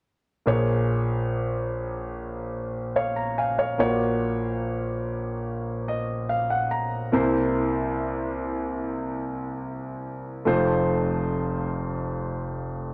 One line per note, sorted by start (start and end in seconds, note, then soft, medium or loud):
0.45 3.76 A#1 soft
0.45 3.76 A#2 soft
0.45 3.34 A#3 soft
0.45 3.34 G#4 soft
0.45 2.93 C#5 soft
2.96 3.16 C#5 soft
2.96 3.16 F5 soft
3.16 3.37 A#5 soft
3.38 3.57 F5 soft
3.38 3.58 G#5 soft
3.58 3.79 C#5 soft
3.58 3.98 F5 soft
3.78 7.09 A#1 soft
3.78 7.09 A#2 soft
3.78 7.09 A#3 soft
3.78 7.09 F#4 soft
3.78 7.10 C#5 medium
5.89 6.27 D#5 soft
6.29 6.49 F5 soft
6.50 6.70 F#5 soft
6.71 7.10 A#5 soft
7.12 10.43 C2 medium
7.12 10.43 C3 soft
7.12 10.42 A#3 soft
7.12 10.43 E4 soft
7.12 10.43 C5 medium
10.45 12.94 F1 soft
10.45 12.94 F2 soft
10.45 12.92 A3 soft
10.45 12.93 F4 soft
10.45 12.93 C5 medium